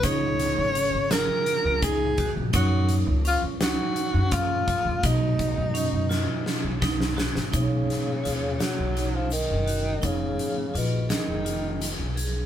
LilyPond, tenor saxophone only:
\new Staff \with { instrumentName = "Tenor saxophone" } { \time 7/8 \key b \lydian \tempo 4 = 84 cis''4. ais'4 gis'8. r16 | fis'8 r8 eis'8 fis'4 eis'4 | dis'2~ dis'8 r4 | cis4. fis8. eis16 dis4 |
cis4 ces8 ees4. r8 | }